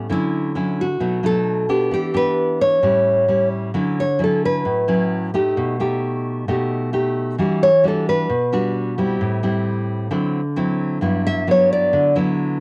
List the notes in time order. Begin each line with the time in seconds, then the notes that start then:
0.09 D3 F#3 C#4 E4
0.55 F#3 C#4 E4
0.81 F#4
1.00 B2 F#3 A3 D#4
1.23 F#3 A3 D#4 A4
1.69 B3 D4 G4
1.91 E3 G4
2.14 B3 D4 G4 B4
2.61 C#5
2.83 A2 G3 C#4 E4
3.28 G3 C#4 E4
3.74 D3 F#3 C#4 E4
4.00 C#5
4.19 F#3 C#4 E4
4.24 A4
4.45 B4
4.65 A2
4.88 F#3 C#4 E4
5.34 A3 D#4 G4
5.57 B2
5.80 A3 D#4 G4
6.48 B2 A3 D#4 G4
6.93 A3 D#4 G4
7.38 E3 G3 D4 F#4
7.63 C#5
7.84 G3 D4 F#4
7.88 A4
8.09 B4
8.29 B2
8.52 G3 D4 F#4
8.98 G3 C4 E4
9.21 A2
9.43 G3 C4 E4
10.11 D3 F#3 C4 E4
10.56 F#3 C4 E4
11.01 G2 F#3 B3 E4
11.27 E5
11.47 F#3 B3 E4 C#5
11.73 D5
11.93 D3
12.16 F#3 B3 E4